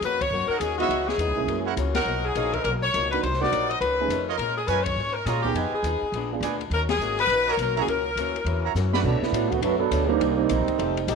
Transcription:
0.01 F2 D#3 A#3 C#4 B4, hi-hat pedal, ride
0.05 F#4
0.21 C#5, kick, ride
0.30 F#2 D#3 A#3 C#4 F#4
0.48 D#4 A#4 C#5 F#5, muted upright bass stroke
0.58 D#2 D#3 A#3 C#4 G#4, hi-hat pedal, ride
0.62 F#4
0.77 G#3 B3 D#4 E4 F#4 B4 C#5 D#5 E5, ride
0.89 C#2 C#3 E3 B3 D#4, ride
1.07 G#4, snare
1.18 E2 C#3 E3 B3 D#4, hi-hat pedal, ride
1.27 C#2
1.36 B1 G#3 A#3 C#4 E4
1.47 F#2 E3 A#3 C#4, ride
1.65 E4 A#4 C#5 F#5
1.76 C#2 F#2 E3 A#3 C#4, hi-hat pedal, ride
1.95 D#4 A#4 C#5 F#5, snare, ride
2.05 B1 B2 F3 A#3 D#4
2.25 G#4
2.35 A#1 B2 F3 A#3 D#4 A#4 C#5 F5, hi-hat pedal, ride
2.53 A#4, kick, ride
2.63 B1 B2 F3 A#3 D#4 A#4, ride
2.82 C#5
2.93 C#2 B2 F3 A#3 D#4, hi-hat pedal, ride
3.11 A#3 D4 D#4 F#4 B4, ride
3.23 C2 C3 F#3 A#3 D#4 C5, ride
3.33 snare
3.41 A#3 D4 D#4 F#4 A#4 C5 D5 F#5, snare
3.52 A#1 C3 F#3 A#3 D#4, hi-hat pedal, ride
3.69 D#5, ride
3.80 C#2 F2 D#3 A3 C#4 B4, ride
4.00 A3 C#4 D#4 G#4
4.08 F2 D#3 A3, hi-hat pedal, ride
4.12 C#4
4.28 F4 A#4 C#5 D#5
4.38 A#2 G#3 A#4, ride
4.42 C#4 F4
4.55 G#4
4.67 F#2 A#2 G#3 C#4 F4 A#4 B4 C#5 G#5, hi-hat pedal, ride
4.71 F4
4.83 C#5, kick, ride
4.96 G#2 A#2 G#3
5.00 C#4 F4
5.13 A#4
5.26 A#2 G#3 C#4 F4 G#4 A#4 C#5 A#5, snare, hi-hat pedal, ride
5.42 B3 D#4 G4 G#4, kick
5.54 F2 F3 B3 D#4 F4 B4 D#5 G#5, ride
5.58 G#4
5.72 G#4, muted upright bass stroke
5.83 D#2 F3 B3 D#4 G#4, hi-hat pedal, ride
6.02 muted upright bass stroke
6.12 A#1 A#2 G#3 B3, ride
6.17 D4
6.33 B3 D4 F4 G#4
6.41 D2 A#2 G#3 B3 D4 G#4 B4 D5 G#5, hi-hat pedal, ride
6.61 ride
6.70 D#2 D#3 A#3 C#4 F#4 A#4, ride
6.89 G#4, snare, ride
6.99 G#1 D#3 A#3 C#4 F#4, hi-hat pedal
7.19 B4, ride
7.27 A#1, ride
7.31 D#3 A#3 C#4 F#4
7.47 F#4 A#4 C#5 D#5 A#5
7.57 B1 D#3 A#3 C#4 F#4 A#4, hi-hat pedal, ride
7.76 A#3 C#4 E4 F#4 G#4 C#5 E5 A#5, ride
7.87 C#2 F#2 E3 A#3 A#4, ride
7.91 C#4
8.16 D2 F#2 E3 A#3 C#4, hi-hat pedal, ride
8.36 ride
8.45 E2 F#2 E3 A#3 C#4, ride
8.64 F#4 C#5 E5 A#5
8.74 F#2 E3 A#3 C#4, snare, hi-hat pedal
8.93 B2 A3 C#4 D4 F#4 B4 D5 B5, snare
9.03 B2 F#3 A3 B3 D4, kick, crash
9.22 A3 B3 D4 E4, muted upright bass stroke, snare
9.32 A2 B2 F#3 A3 D4, hi-hat pedal, ride
9.51 D3 A3 B3 F#4, kick, ride
9.61 F#2 B2 F#3 A3 D4 F#4 B4, ride
9.79 F#3 B3 D4 A4
9.91 D2 B2 F#3 A3 D4, hi-hat pedal, ride
10.07 D#3 G3 A#3 C4 D4 D#4 G4
10.20 C2 C3 G3 A#3 D#4, ride
10.36 G3 A#3 C4 D#4
10.49 A#1 C3 G3 A#3 D#4, hi-hat pedal, ride
10.68 muted upright bass stroke, kick, ride
10.78 F1 F3 A3 D#4 G4, ride
10.97 ride
11.08 A1 F3 A3 D#4 G4, hi-hat pedal, ride

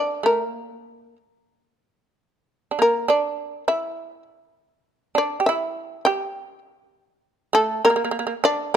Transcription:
Already playing: D4 D5
0.23 A3 A#4
0.45 A#3
2.71 D4
2.79 A#3 A#4
3.08 D4 D5
3.68 E4 E5
5.15 D4 D5
5.40 G4
5.46 E4 E5
6.05 G4 G5
7.53 A3 A4
7.85 A#3 A#4
7.90 A#3
7.96 A#3
8.04 A#3
8.11 A#3
8.19 A#3
8.27 A#3
8.44 D4 D5

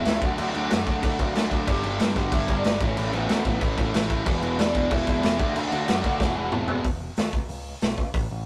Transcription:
Already playing: E4 E5
0.05 C#2 E2 B2 E3 G#3 B3 E4, snare, crash
0.21 D2 D3 F#3 A3 D4 F#4 F#5, kick, crash
0.37 D2 D3 F#3 A3 D4, crash
0.53 D2 D3 F#3 A3 D4, crash
0.70 F#2 D3 F#3 A3 D4, snare, crash
0.86 D2 D3 F#3 A3 D4, kick, crash
1.02 D2 D3 F#3 A3 D4, kick, crash
1.18 D2 D3 F#3 A3 D4, kick, crash
1.34 D2 D3 F#3 A3 D4, snare, crash
1.51 D3 F#3 A3 D4, kick, crash
1.67 G1 G2 D3 G3 B3 D4 G4 G5, kick, crash
1.83 G1 G2 D3 G3 B3 D4, crash
1.99 G2 D3 G3 B3 D4 G4 G5, snare, crash
2.15 G1 G2 D3 G3 B3 D4 F#4 F#5, kick, crash
2.32 G1 G2 D3 G3 B3 D4 E4 E5, kick, crash
2.48 G1 G2 D3 G3 B3 D4, kick, crash
2.57 D4 D5
2.64 G1 G2 D3 G3 B3 D4, snare, crash
2.80 A1 A2 E3 A3 C#4 E4 C#5, kick, crash
2.96 A1 A2 E3 A3 C#4 E4 C#5, crash
3.13 A1 A2 E3 A3 B3 C#4 E4 B4, crash
3.29 D2 A2 E3 A3 C#4 E4, snare, crash
3.45 A1 A2 E3 A3 C#4 E4, kick, crash
3.61 A1 A2 E3 A3 C#4 E4, kick, crash
3.78 A1 A2 E3 A3 C#4 E4, kick, crash
3.94 A1 A2 E3 A3 C#4 E4, snare, crash
4.10 A2 E3 A3 C#4 E4, kick, crash
4.26 E1 E2 B2 E3 G#3 B3 E4 B4, kick, crash
4.42 E1 E2 B2 E3 G#3 B3 E4, crash
4.58 E2 B2 E3 G#3 B3 D4 E4 D5, snare, crash
4.75 E1 E2 B2 E3 G#3 B3 E4, kick, crash
4.90 E1 E2 B2 E3 G#3 B3 E4 E5, kick, crash
5.07 E1 E2 B2 E3 G#3 B3 E4, kick, crash
5.23 E1 E2 B2 E3 G#3 B3 E4, snare, crash
5.40 D2 D3 A3 D4 F#4, kick, crash
5.55 D2 D3 A3 D4 F#4 F#5, crash
5.71 D2 D3 A3 D4 F#4, crash
5.88 F#2 D3 A3 D4 F#4, snare, crash
6.04 D2 D3 A3 D4 F#4, kick, crash
6.20 E1 E2 B2 E3 G#3 B3 E4, kick, snare
6.36 E1 E2 B2 E3 G#3 B3 E4
6.51 E1 E2 B2 E3 G#3 B3 E4, mid tom
6.68 E2 B2 E3 G#3 B3 E4, floor tom
6.84 E1, kick, open hi-hat
7.17 D#2, snare, open hi-hat
7.33 C#2, kick
7.49 C#2, open hi-hat
7.81 B1, snare, open hi-hat
7.98 C#2, kick
8.14 A1, kick, open hi-hat
8.31 A1

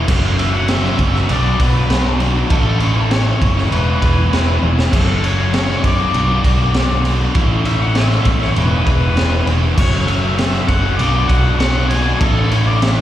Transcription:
0.07 F#1 F#2 C#3 F#3 A3 C#4 F#4, kick, crash
0.24 F#3 A3 C#4
0.38 F#3 A3 C#4 F#4 E5, ride
0.53 F#3 A3 C#4 F#4 F#5
0.68 F#2 C#3 F#3 A3 C#4 F#4 E5, snare, ride
0.84 A3 C#4 F#4, snare
0.97 F#1 C#3 F#3 A3 C#4, muted overdriven electric guitar stroke, kick, ride
1.14 F#3 A3 C#4 F#4, snare
1.29 B1 B2 F#3 B3 D4 F#4 D5, ride
1.43 F#3 B3 D4
1.59 B1 B2 F#3 B3 D4 B4, kick, ride
1.63 F#4
1.74 F#3 B3 D4
1.90 B2 F#3 B3 D4 F#4, snare, ride
2.05 B3 D4 F#4
2.18 B2 F#3 B3 D4 F#4, ride
2.34 F#3 B3 D4 F#4
2.49 A1 A2 E3 A3 C#4 E4 A4, kick, ride
2.64 A3 C#4 E4
2.79 E3 A3 C#4 E4 C#5, ride
2.94 A3 C#4 E4 A4
3.09 A2 E3 A3 C#4 E4 C#5, snare, ride
3.25 A3 C#4 E4
3.40 F#1 E3 A3 C#4 E4, muted overdriven electric guitar stroke, kick, ride
3.56 A3 C#4 E4, snare
3.70 E1 E3 G#3 B3 E4 B4, ride
3.85 G#3 B3 E4
4.01 E1 E3 G#3 B3 E4, kick, ride
4.15 G#3 B3 E4
4.31 E3 G#3 B3 E4, snare, ride
4.46 G#3 B3 E4
4.60 E1 E3 G#3 B3 E4, high tom
4.76 G#3 B3 E4, snare
4.91 F#1 F#2 C#3 F#3 A3 C#4 F#4 A4, kick, crash
4.95 A4 F#5 C#6
5.06 A3 C#4 F#4
5.21 C#3 F#3 A3 C#4 C#5, ride
5.36 F#3 A3 C#4 F#4
5.52 F#2 C#3 F#3 A3 C#4 F#4 C#5, snare, ride
5.68 F#3 A3 C#4, snare
5.83 F#2 F#3 A3 C#4 F#4 D5, muted overdriven electric guitar stroke, kick, ride
5.98 F#3 A3 C#4 F#4
6.12 B1 B2 F#3 B3 D4 F#4, ride
6.17 D5 F#5 B5
6.29 B3 D4 F#4
6.43 B1 B2 F#3 B3 D4 F#4, kick, ride
6.58 B3 D4 F#4
6.73 B2 F#3 B3 D4 F#4, snare, ride
6.88 F#3 B3 D4
7.03 B2 F#3 B3 D4 F#4, ride
7.19 F#3 B3 D4 F#4
7.33 A1 A2 E3 A3 C#4 E4 C#5 E5 C#6, kick, ride
7.50 A3 C#4 E4
7.64 E3 A3 C#4 E4 E5, ride
7.79 A3 C#4 E4 F#5
7.95 A2 E3 A3 C#4 E4 E5, snare, ride
8.10 A3 C#4 E4, snare
8.25 A1 E3 A3 C#4 E4, muted overdriven electric guitar stroke, kick, ride
8.39 A3 C#4 E4 C#5, snare
8.55 E1 E3 G#3 B3 E4 G#4 B4 B5, ride
8.71 G#3 B3 E4
8.86 E1 E3 G#3 B3 E4 B4, kick, ride
9.01 G#3 B3 E4
9.16 E3 G#3 B3 E4, snare, ride
9.32 G#3 B3 E4
9.46 E1 E3 G#3 B3 E4, ride
9.63 G#3 B3 E4
9.76 F#1 F#2 C#3 F#3 A3 C#4 F#4 A4 C#5 F#5 C#6, kick, crash
9.92 F#3 A3 C#4
10.07 F#3 A3 C#4 F#4 E5, ride
10.22 F#3 A3 C#4 F#4
10.38 F#2 C#3 F#3 A3 C#4 F#4 E5, snare, ride
10.53 A3 C#4 F#4, snare
10.67 F#1 C#3 F#3 A3 F#5, muted overdriven electric guitar stroke, kick, ride
10.72 C#4
10.82 A3 C#4 F#4
10.87 F#3
10.97 B1 B2 F#3 B3 D4 F#4 D5 B5, ride
11.13 F#3 B3 D4
11.27 B1 B2 F#3 B3 D4 F#4 F#5, kick, ride
11.44 F#3 B3 D4
11.58 B2 F#3 B3 D4 F#4 F#5, snare, ride
11.74 B3 D4 F#4
11.88 B2 F#3 B3 D4 F#4 G#5, ride
12.04 F#3 B3 D4 F#4
12.20 A1 A2 E3 A3 C#4 E4 A4 C#5 E5 C#6, kick, ride
12.34 A3 C#4 E4
12.49 E3 A3 C#4 E4 C#5, ride
12.65 A3 C#4 E4 D5
12.80 A2 E3 A3 C#4 E4 E5, snare, ride
12.95 A3 C#4 E4

